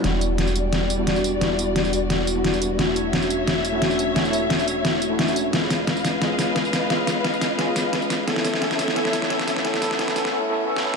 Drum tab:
HH |x-x-x-x-x-x-x-x-|x-x-x-x-x-x-x-x-|x-x-x-x-x-x-x-x-|x-x-x-x-x-x-x-x-|
TB |--x--xx---x--xx-|--x--xx---x--xx-|--x--xx---x--xx-|-xx--xx---x--xx-|
SD |o---o---o---o---|o---o---o---o---|o---o---o---o---|o---o---o---o---|

HH |x-x-x-x-x-x-x-x-|x-x-x-x-x-x-x-x-|x-x-x-x-x-x-x-x-|x-x-x-x---------|
TB |--x--xx---x--xx-|--x--xx---x--xx-|--x--xx---x--xx-|-xx--xx---------|
SD |o-o-o-o-o-o-o-o-|o-o-o-o-o-o-o-o-|oooooooooooooooo|oooooooo-----o--|